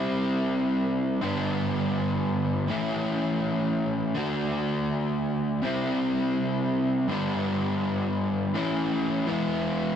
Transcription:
Already playing: C3 G3 C4 E4
1.22 G2 D3 G3 B3 D4
2.68 A2 E3 A3 C#4 E4
4.15 D3 A3 D4 F#4
5.62 C3 G3 C4 E4
7.08 G2 D3 G3 B3 D4
8.54 A2 E3 A3 C#4 E4
9.26 E3 G#3 B3 E4

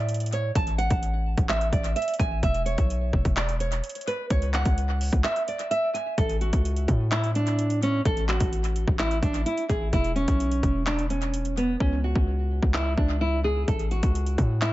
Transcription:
Already playing: A2 D5
0.09 closed hi-hat
0.14 closed hi-hat
0.20 closed hi-hat
0.26 closed hi-hat
0.33 C#5, closed hi-hat
0.55 A1 A5, kick, closed hi-hat
0.67 closed hi-hat
0.78 F#5, closed hi-hat
0.90 A1, kick, closed hi-hat
1.03 closed hi-hat
1.38 A1, kick, closed hi-hat
1.49 E5, clap, closed hi-hat
1.61 closed hi-hat
1.72 A1 D5, kick, closed hi-hat
1.84 closed hi-hat
1.96 E5, closed hi-hat
2.02 closed hi-hat
2.08 closed hi-hat
2.14 closed hi-hat
2.19 A1 G#5, kick, closed hi-hat
2.43 E1 E5, kick, closed hi-hat
2.54 closed hi-hat
2.66 C#5, closed hi-hat
2.78 B1, kick, closed hi-hat
2.90 closed hi-hat
3.13 E1, kick
3.25 E1, kick, closed hi-hat
3.37 D5, clap, closed hi-hat
3.49 closed hi-hat
3.60 C#5, closed hi-hat
3.72 closed hi-hat
3.84 closed hi-hat
3.89 closed hi-hat
3.95 closed hi-hat
4.01 closed hi-hat
4.07 B4, closed hi-hat
4.30 C#2 C#5, kick, closed hi-hat
4.42 closed hi-hat
4.54 F#5, clap, closed hi-hat
4.65 C#2, kick, closed hi-hat
4.78 closed hi-hat
5.01 open hi-hat
5.13 C#2, kick
5.24 E5, clap, closed hi-hat
5.36 closed hi-hat
5.48 D5, closed hi-hat
5.59 closed hi-hat
5.71 E5, closed hi-hat
5.94 G#5, closed hi-hat
6.18 A1 A4, kick, closed hi-hat
6.29 closed hi-hat
6.41 F#4, closed hi-hat
6.53 C#2, kick, closed hi-hat
6.65 closed hi-hat
6.76 closed hi-hat
6.88 A2, kick, closed hi-hat
7.12 E4, clap, closed hi-hat
7.24 closed hi-hat
7.35 D4, closed hi-hat
7.47 closed hi-hat
7.59 closed hi-hat
7.70 closed hi-hat
7.83 C#4, closed hi-hat
8.05 A1 A4, kick, closed hi-hat
8.17 closed hi-hat
8.28 F#4, clap, closed hi-hat
8.40 A1, kick, closed hi-hat
8.53 closed hi-hat
8.64 closed hi-hat
8.76 closed hi-hat
8.88 A1, kick
8.99 E4, clap, closed hi-hat
9.11 closed hi-hat
9.22 A1 D4, kick, closed hi-hat
9.34 closed hi-hat
9.46 E4, closed hi-hat
9.58 closed hi-hat
9.69 A1 G#4, kick, closed hi-hat
9.93 E1 E4, kick, closed hi-hat
10.04 closed hi-hat
10.16 C#4, closed hi-hat
10.28 B1, kick, closed hi-hat
10.40 closed hi-hat
10.51 closed hi-hat
10.63 E1, kick, closed hi-hat
10.87 D4, clap, closed hi-hat
10.99 closed hi-hat
11.10 C#4, closed hi-hat
11.22 closed hi-hat
11.34 closed hi-hat
11.45 closed hi-hat
11.57 B3, closed hi-hat
11.80 C#2 C#4, kick
12.04 F#4
12.16 C#2, kick
12.63 C#2, kick
12.74 E4, clap
12.98 C#2 D4, kick
13.21 E4
13.44 G#4
13.68 A1 A4, kick, closed hi-hat
13.79 closed hi-hat
13.91 F#4, closed hi-hat
14.03 C#2, kick, closed hi-hat
14.15 closed hi-hat
14.27 closed hi-hat
14.38 A2, kick, closed hi-hat
14.62 E4, clap, closed hi-hat

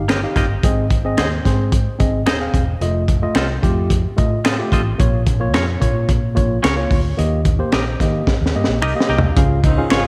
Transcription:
Already playing: G1 D#3
0.08 A#3 F4 G4 D#5, finger snap, snare, closed hi-hat
0.23 D#4 G4 F5
0.36 G1 A#3 F4 G4 D#5, kick, snare, closed hi-hat
0.63 G#1 G#2 C4 G#4 D#5, kick, closed hi-hat
0.90 kick, closed hi-hat
1.05 C4 G#4 D#5
1.17 D#2 D#4 G#4 C5 D#5, finger snap, snare, closed hi-hat
1.45 G#2 C4 G#4 C5, kick, snare, closed hi-hat
1.72 kick, closed hi-hat
1.99 G#1 C4 G#4 D#5, kick, closed hi-hat
2.26 D#1 D#4 G#4 C5 D#5, finger snap, snare, closed hi-hat
2.40 C4 G#4 F5
2.54 E1, kick, closed hi-hat
2.81 F1 A3 F4 D#5, closed hi-hat
3.08 kick, closed hi-hat
3.22 A3 F4 D#5
3.35 C2 C4 F4 A4 D#5, finger snap, snare, closed hi-hat
3.62 F2 A3 F4 G4, kick, closed hi-hat
3.90 kick, closed hi-hat
4.16 A2 A3 F4 D#5, kick, closed hi-hat
4.45 C4 F4 A4 D#5, finger snap, snare, closed hi-hat
4.58 A3 F4 G4
4.72 A1 C4 F4 A4 D#5, kick, closed hi-hat
4.98 A#1 A#2 A#3 F4 C#5, kick, closed hi-hat
5.26 kick, closed hi-hat
5.40 A#3 F4 C#5
5.54 F2 C#4 F4 A#4 C#5, finger snap, snare, closed hi-hat
5.80 A#2 A#3 F4 C#5, kick, closed hi-hat
6.09 kick, closed hi-hat
6.35 A#1 A#3 F4 C#5, kick, closed hi-hat
6.63 C#2 C#4 F4 A#4 C#5, finger snap, snare, closed hi-hat
6.76 A#3 F4 C#5
6.91 D2, kick, open hi-hat
7.17 D#2 D#3 A#3 G4 D#5, closed hi-hat
7.45 kick, closed hi-hat
7.59 A#3 G4 C5
7.72 A#1 D#4 G4 A#4 D#5, finger snap, snare, closed hi-hat
8.00 D#3 A#3 G4 D#5, kick, snare, closed hi-hat
8.27 kick, snare
8.41 D#2
8.46 snare
8.54 G2 A#3 G4 D#5
8.64 A#1, snare
8.81 C2 D#4 G4 A#4 D#5, finger snap
8.95 A#3 G4 D#5 F5
9.00 snare
9.09 C2 D#4 G4 A#4 D#5
9.18 floor tom
9.37 C#2 C#3 C#4 F4 G#4 F5, kick, closed hi-hat
9.63 D#3 C4 D#4, kick, closed hi-hat
9.78 C#4 F4 G#4 F5
9.90 G#1 C#3 G#3 C#4 F4 G#4 C#5, finger snap, snare, closed hi-hat

